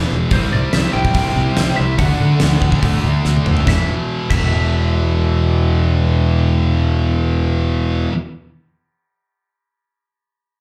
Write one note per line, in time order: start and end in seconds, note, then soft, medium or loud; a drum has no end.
0.00 0.29 E2 medium
0.00 0.30 E2 medium
0.00 0.29 B2 medium
0.00 0.31 B2 medium
0.00 0.31 E3 medium
0.13 0.25 E1 medium
0.30 0.44 C2 medium
0.30 1.13 C3 medium
0.30 1.14 G3 medium
0.30 1.14 C4 medium
0.30 0.38 C5 medium
0.30 kick loud
0.30 open hi-hat soft
0.53 0.66 C2 medium
0.53 0.74 D5 medium
0.73 0.86 C2 medium
0.73 0.93 E5 medium
0.73 snare loud
0.73 open hi-hat soft
0.93 1.08 C2 medium
0.93 1.15 G5 medium
1.05 kick medium
1.14 1.28 C2 medium
1.14 1.97 C3 medium
1.14 1.98 G3 medium
1.14 1.99 C4 medium
1.14 1.76 G5 medium
1.14 kick medium
1.14 open hi-hat soft
1.36 1.49 C2 medium
1.57 1.70 C2 medium
1.57 snare loud
1.57 open hi-hat soft
1.76 1.98 C2 medium
1.76 1.98 E5 medium
1.98 2.11 D2 medium
1.98 2.81 D3 medium
1.98 2.82 A3 medium
1.98 2.83 D4 medium
1.98 3.42 F#5 medium
1.98 kick medium
1.98 open hi-hat soft
2.20 2.33 D3 medium
2.40 2.55 D2 medium
2.40 snare loud
2.40 open hi-hat soft
2.61 2.74 D2 medium
2.61 kick medium
2.72 kick medium
2.82 2.96 D2 medium
2.82 3.65 D3 medium
2.82 3.66 A3 medium
2.82 3.67 D4 medium
2.82 kick medium
2.82 open hi-hat soft
3.04 3.17 D2 medium
3.25 3.38 D2 medium
3.25 snare medium
3.36 high tom medium
3.46 3.60 D2 medium
3.46 mid tom medium
3.57 floor tom medium
3.66 3.79 E1 medium
3.66 4.31 E2 medium
3.66 4.32 B2 medium
3.66 3.79 E5 medium
3.66 kick medium
3.66 snare medium
3.71 4.35 E3 medium
4.30 8.06 E1 medium
4.30 8.11 E2 medium
4.30 8.12 B2 medium
4.30 7.79 E5 medium
4.30 kick medium
4.30 crash medium
4.35 8.15 E3 medium